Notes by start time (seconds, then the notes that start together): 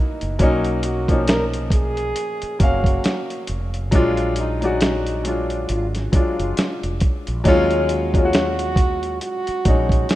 Already playing: E3 A3 A#3 D#4 E4 F#4
0.21 F#1, closed hi-hat
0.39 B1 F#3 A#3 C#4 F#4, kick, closed hi-hat
0.43 D#4
0.64 closed hi-hat
0.83 F#4, closed hi-hat
1.08 F3 A#3 C#4, kick, closed hi-hat
1.12 D#4
1.27 A#4, snare, closed hi-hat
1.53 closed hi-hat
1.70 G#4, kick, closed hi-hat
1.97 closed hi-hat
2.16 closed hi-hat
2.42 muted fretless electric bass stroke, closed hi-hat
2.59 F#1 F#3 A#3 C#4 F#4, kick, closed hi-hat
2.64 F5
2.84 kick, closed hi-hat
3.04 snare, closed hi-hat
3.30 closed hi-hat
3.47 F1, closed hi-hat
3.74 closed hi-hat
3.91 A#1 F#3 G#3 D4 F4, kick, closed hi-hat
3.95 F4
4.17 closed hi-hat
4.36 D#4, closed hi-hat
4.61 F#3 G#3 D5, closed hi-hat
4.65 F#4
4.81 snare, closed hi-hat
5.07 closed hi-hat
5.24 F#3 G#3 D4, closed hi-hat
5.28 F4
5.50 closed hi-hat
5.69 G#1 F4, closed hi-hat
5.95 snare, closed hi-hat
6.12 F#3 G#3 D4 F4, kick, closed hi-hat
6.16 F4
6.39 F#1, closed hi-hat
6.57 snare, closed hi-hat
6.83 F1, closed hi-hat
7.00 kick, closed hi-hat
7.27 A#1, closed hi-hat
7.44 D#2 F#3 G#3 C#4, kick, closed hi-hat
7.48 F4
7.71 closed hi-hat
7.89 F#4, closed hi-hat
8.14 F#3 G#3 C#4, kick, closed hi-hat
8.18 F4
8.25 F#4
8.33 snare, closed hi-hat
8.59 closed hi-hat
8.76 kick, closed hi-hat
9.03 closed hi-hat
9.21 F#4, closed hi-hat
9.47 muted fretless electric bass stroke, closed hi-hat
9.65 A#1 F#3 G#3 C#4, kick, closed hi-hat
9.69 D#4
9.89 kick, closed hi-hat
10.09 D#4, snare, closed hi-hat